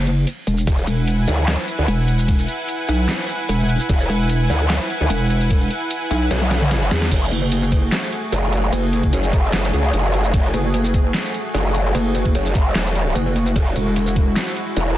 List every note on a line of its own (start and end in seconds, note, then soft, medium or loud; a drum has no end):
0.00 0.25 F#1 loud
0.07 closed hi-hat soft
0.27 closed hi-hat medium
0.27 ride soft
0.47 0.66 E1 loud
0.47 closed hi-hat medium
0.58 shaker medium
0.67 0.86 E1 loud
0.67 7.08 E4 medium
0.67 7.07 B4 medium
0.67 7.08 F#5 medium
0.67 7.08 G#5 medium
0.67 kick loud
0.67 closed hi-hat medium
0.67 ride medium
0.78 shaker medium
0.87 1.26 E1 loud
0.87 closed hi-hat medium
1.07 closed hi-hat medium
1.07 ride soft
1.07 shaker medium
1.28 1.57 D2 loud
1.28 closed hi-hat medium
1.28 shaker medium
1.48 snare loud
1.48 clap medium
1.48 closed hi-hat medium
1.48 ride medium
1.68 closed hi-hat medium
1.79 1.86 D2 medium
1.88 2.47 E1 loud
1.88 closed hi-hat medium
1.88 ride soft
2.08 closed hi-hat medium
2.19 shaker medium
2.28 kick loud
2.28 closed hi-hat medium
2.28 ride medium
2.39 shaker medium
2.48 closed hi-hat medium
2.68 closed hi-hat medium
2.68 ride soft
2.68 shaker medium
2.89 3.07 B1 loud
2.89 closed hi-hat medium
2.89 shaker medium
3.09 snare loud
3.09 clap medium
3.09 closed hi-hat medium
3.09 ride medium
3.29 closed hi-hat medium
3.49 3.78 E1 loud
3.49 closed hi-hat medium
3.49 ride soft
3.69 closed hi-hat medium
3.80 shaker medium
3.89 4.08 E1 loud
3.89 kick loud
3.89 closed hi-hat medium
3.89 ride medium
4.00 shaker medium
4.09 4.48 E1 loud
4.09 closed hi-hat medium
4.30 closed hi-hat medium
4.30 ride soft
4.30 shaker medium
4.50 4.79 D2 loud
4.50 closed hi-hat medium
4.50 shaker medium
4.70 snare loud
4.70 clap medium
4.70 closed hi-hat medium
4.70 ride medium
4.90 closed hi-hat medium
5.01 5.09 D2 loud
5.10 5.69 E1 loud
5.10 closed hi-hat medium
5.10 ride medium
5.30 closed hi-hat medium
5.41 shaker medium
5.50 kick loud
5.50 closed hi-hat medium
5.50 ride medium
5.61 shaker medium
5.70 closed hi-hat medium
5.91 closed hi-hat medium
5.91 ride soft
5.91 shaker medium
6.11 6.29 B1 loud
6.11 closed hi-hat medium
6.11 shaker medium
6.31 6.90 B1 loud
6.31 snare medium
6.31 closed hi-hat medium
6.31 ride medium
6.41 high tom medium
6.51 snare medium
6.51 closed hi-hat medium
6.62 mid tom medium
6.71 snare medium
6.71 closed hi-hat medium
6.71 ride soft
6.91 7.10 E2 loud
6.91 snare loud
6.91 closed hi-hat medium
7.02 snare medium
7.02 shaker medium
7.11 7.30 F#1 loud
7.11 13.52 A3 medium
7.11 14.98 F#4 medium
7.11 13.52 G#4 medium
7.11 kick loud
7.11 closed hi-hat medium
7.11 ride medium
7.11 crash loud
7.32 7.90 F#1 loud
7.32 closed hi-hat medium
7.52 closed hi-hat medium
7.52 ride soft
7.62 shaker medium
7.72 kick loud
7.72 closed hi-hat medium
7.92 snare loud
7.92 clap medium
7.92 closed hi-hat medium
7.92 ride medium
8.03 shaker medium
8.12 closed hi-hat medium
8.32 8.71 F#1 medium
8.32 closed hi-hat medium
8.32 ride soft
8.53 closed hi-hat medium
8.72 9.11 F#1 loud
8.72 closed hi-hat medium
8.72 ride medium
8.93 closed hi-hat medium
9.03 kick medium
9.13 9.52 F#1 loud
9.13 closed hi-hat medium
9.13 ride soft
9.24 shaker medium
9.33 kick loud
9.33 closed hi-hat medium
9.53 9.72 F#1 medium
9.53 snare loud
9.53 clap loud
9.53 closed hi-hat medium
9.53 ride medium
9.64 shaker medium
9.73 9.92 C#2 loud
9.73 closed hi-hat medium
9.93 10.32 F#1 loud
9.93 closed hi-hat medium
9.93 ride soft
10.14 closed hi-hat medium
10.24 shaker medium
10.34 10.52 F#1 loud
10.34 kick loud
10.34 closed hi-hat medium
10.34 ride medium
10.54 11.13 F#1 loud
10.54 closed hi-hat medium
10.74 closed hi-hat medium
10.74 ride soft
10.85 shaker medium
10.94 kick loud
10.94 closed hi-hat medium
11.14 snare loud
11.14 clap medium
11.14 closed hi-hat medium
11.14 ride medium
11.25 shaker medium
11.34 closed hi-hat medium
11.54 11.93 F#1 loud
11.54 closed hi-hat medium
11.54 ride soft
11.75 closed hi-hat medium
11.95 12.33 F#1 loud
11.95 closed hi-hat medium
11.95 ride medium
12.15 closed hi-hat medium
12.25 kick medium
12.35 12.74 F#1 loud
12.35 closed hi-hat medium
12.35 ride soft
12.46 shaker medium
12.55 kick loud
12.55 closed hi-hat medium
12.75 13.14 E1 loud
12.75 snare loud
12.75 clap medium
12.75 closed hi-hat medium
12.75 ride medium
12.86 shaker medium
12.95 closed hi-hat medium
13.15 13.54 F#1 loud
13.15 closed hi-hat medium
13.15 ride soft
13.36 closed hi-hat medium
13.46 shaker medium
13.56 13.74 E1 loud
13.56 14.98 G#3 medium
13.56 14.98 E4 medium
13.56 kick loud
13.56 closed hi-hat medium
13.56 ride medium
13.76 14.35 E1 loud
13.76 closed hi-hat medium
13.96 closed hi-hat medium
13.96 ride soft
14.07 shaker medium
14.16 kick loud
14.16 closed hi-hat medium
14.36 snare loud
14.36 clap medium
14.36 closed hi-hat medium
14.36 ride medium
14.47 shaker medium
14.56 closed hi-hat medium
14.77 14.98 E1 loud
14.77 closed hi-hat medium
14.77 ride soft